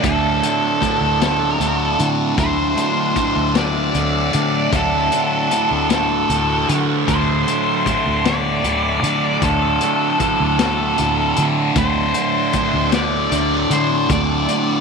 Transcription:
Already playing: F#3 A3 D4 F#4 A4
0.03 D2 A2 D3 A4, kick, closed hi-hat
0.43 A2 D3, closed hi-hat
0.82 D2 A2 D3, kick, closed hi-hat
1.01 D2
1.20 A2 D3 A4, snare, closed hi-hat
1.60 D2 A2 D3, closed hi-hat
1.98 A2 D3, closed hi-hat
2.37 D2 A2 D3 C5, kick, closed hi-hat
2.76 A2 D3, closed hi-hat
3.15 D2 A2 D3, kick, closed hi-hat
3.36 D2
3.54 A2 D3 D5, snare, closed hi-hat
3.93 D2 A2 D3, closed hi-hat
4.33 A2 D3, closed hi-hat
4.72 D2 A2 D3 A4, kick, closed hi-hat
5.12 A2 D3, closed hi-hat
5.51 D2 A2 D3, closed hi-hat
5.71 D2
5.90 A2 D3 A4, snare, closed hi-hat
6.29 D2 A2 D3, closed hi-hat
6.69 A2 D3, closed hi-hat
7.07 D2 A2 D3 E4 C5, kick, closed hi-hat
7.47 A2 D3, closed hi-hat
7.86 D2 A2 D3, kick, closed hi-hat
8.06 D2
8.25 A2 D3 D5, snare, closed hi-hat
8.64 D2 A2 D3, closed hi-hat
9.03 A2 D3, closed hi-hat
9.42 D2 A2 D3 A4, kick, closed hi-hat
9.81 A2 D3, closed hi-hat
10.20 D2 A2 D3, kick, closed hi-hat
10.40 D2
10.59 A2 D3 A4, snare, closed hi-hat
10.98 D2 A2 D3, closed hi-hat
11.36 A2 D3, closed hi-hat
11.75 D2 A2 D3 C5, kick, closed hi-hat
12.14 A2 D3, closed hi-hat
12.53 D2 A2 D3, kick, closed hi-hat
12.74 D2
12.92 A2 D3 D5, snare, closed hi-hat
13.32 D2 A2 D3, closed hi-hat
13.70 A2 D3 C5, closed hi-hat
14.09 D2 A2 D3 D5, kick, closed hi-hat
14.48 A2 D3, closed hi-hat

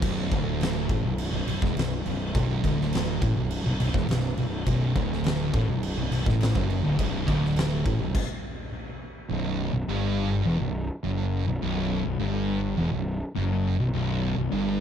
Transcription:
0.02 B0 B1, kick, crash
0.32 D1 D2, kick, crash
0.61 snare, crash
0.89 A1 A2, kick, crash
1.04 B0 B1
1.18 crash
1.34 B0 B1
1.48 B0 B1, crash
1.62 E1 E2, kick, snare
1.76 B0 B1, snare, crash
2.06 B0 B1, crash
2.35 B0 B1, kick, crash
2.64 D1 D2, kick, crash
2.81 snare
2.93 snare, crash
3.22 A1 A2, kick, crash
3.36 B0 B1
3.51 crash
3.65 B0 B1
3.80 B0 B1, crash
3.94 E1 E2, kick, snare
4.09 B0 B1, snare, crash
4.37 B0 B1, crash
4.66 B0 B1, kick, crash
4.96 D1 D2, kick, crash
5.13 snare
5.24 snare, crash
5.54 A1 A2, kick, crash
5.68 B0 B1
5.83 crash
5.97 B0 B1
6.11 B0 B1, crash
6.26 A1 A2, kick, snare
6.41 snare, crash
6.55 F#1 F#2, kick
6.70 crash
6.85 D1 D2
6.99 B0 B1, kick, crash
7.28 D1 D2, kick, crash
7.45 snare
7.56 snare, crash
7.86 A1 A2, kick, crash
8.00 B0 B1
8.15 kick, crash
9.31 B0 B1
9.74 B0 B1
9.88 G1 G2
10.45 E1 E2
10.60 B0 B1
11.04 F#1 F#2
11.47 B0 B1
11.62 B0 B1
12.06 B0 B1
12.20 G1 G2
12.78 E1 E2
12.92 B0 B1
13.35 F#1 F#2
13.80 B0 B1
13.94 B0 B1
14.37 B0 B1
14.52 G1 G2

